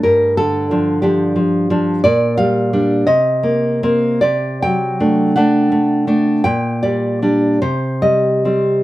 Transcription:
\new Staff \with { instrumentName = "Nylon-string guitar" } { \time 6/8 \key g \minor \tempo 4. = 56 << { bes'8 a'4 g'8 r4 | d''8 f''4 ees''4. | d''8 g''4 fis''4. | g''8 d''4 c''8 ees''4 | } \\ { g,8 d8 <f d'>8 <f d'>8 f8 <f d'>8 | bes,8 g8 <g d'>8 c8 bes8 <bes c'>8 | c8 fis8 <a d'>8 <a d'>8 a8 <a d'>8 | bes,8 g8 <g d'>8 c8 g8 <g c'>8 | } >> }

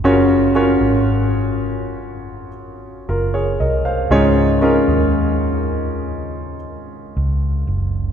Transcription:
<<
  \new Staff \with { instrumentName = "Grand piano" } { \time 4/4 \key des \major \tempo 4 = 59 << { r2. <f' bes'>16 <aes' des''>16 <bes' ees''>16 <c'' f''>16~ | <c'' f''>16 r2. r8. | } \\ { <des' f' ges' bes' des''>8 <des' f' ges' bes' des''>2 r4. | <des' ees' f' aes' des''>8 <des' ees' f' aes' bes'>2 r4. | } >> }
  \new Staff \with { instrumentName = "Grand piano" } { \clef bass \time 4/4 \key des \major des4. r2 r8 | aes,4. r2 r8 | }
  \new Staff \with { instrumentName = "Fingered electric bass" } { \clef bass \time 4/4 \key des \major ges,,8. aes,,2~ aes,,16 ges,,8 c,8 | des,8. ees,2~ ees,16 des,8 ges,,8 | }
>>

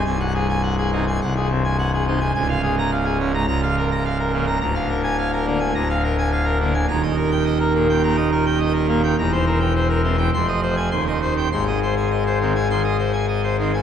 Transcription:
<<
  \new Staff \with { instrumentName = "Pipe organ" } { \time 4/4 \key aes \major \tempo 4 = 105 aes''16 ges''16 aes'16 aes''16 ges''16 aes'16 c16 aes''16 ges''16 aes'16 c16 aes''16 ges''16 aes'16 c16 aes''16 | aes''16 f''16 aes'16 bes''16 f''16 aes'16 aes,16 bes''16 bes''16 f''16 bes'16 bes''16 f''16 bes'16 des16 bes''16 | bes''16 f''16 bes'16 aes''16 f''16 bes'16 d16 aes''16 bes''16 f''16 bes'16 aes''16 f''16 bes'16 d16 aes''16 | bes''16 ees''16 bes'16 g''16 ees''16 bes'16 bes,16 g''16 bes''16 ees''16 bes'16 g''16 ees''16 bes'16 bes,16 g''16 |
bes''16 c''16 bes'16 g''16 c''16 bes'16 e16 g''16 c'''16 ees''16 c''16 aes''16 c'''16 ees''16 c''16 g''16 | c'''16 ees''16 c''16 aes''16 ees''16 c''16 ees16 aes''16 c'''16 ees''16 c''16 aes''16 ees''16 c''16 ees16 aes''16 | }
  \new Staff \with { instrumentName = "Pipe organ" } { \clef bass \time 4/4 \key aes \major << { c,4. ees'16 r16 c,4. ees'16 r16 | des,4. des'16 r16 des,4. bes16 r16 | d,4. bes16 r16 d,4. bes16 r16 | ees,4. bes16 r16 bes,16 r4 r16 bes16 r16 |
e,4. c'16 r16 f,4 ees,4 | aes,4. c'16 r16 ees16 r4 r16 c'16 r16 | } \\ { c,,2 c,,2 | des,,2 des,,2 | d,,2 d,,2 | ees,,1 |
e,,2 f,,4 ees,,4 | aes,,1 | } >> }
>>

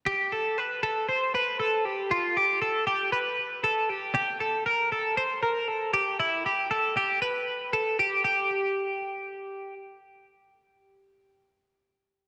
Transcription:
\new Staff \with { instrumentName = "Clean electric guitar" } { \time 4/4 \key g \mixolydian \tempo 4 = 117 g'8 a'8 b'8 a'8 c''8 b'8 a'8 g'8 | f'8 g'8 a'8 g'8 b'4 a'8 g'8 | g'8 a'8 bes'8 a'8 c''8 bes'8 a'8 g'8 | e'8 g'8 a'8 g'8 b'4 a'8 g'8 |
g'2. r4 | r1 | }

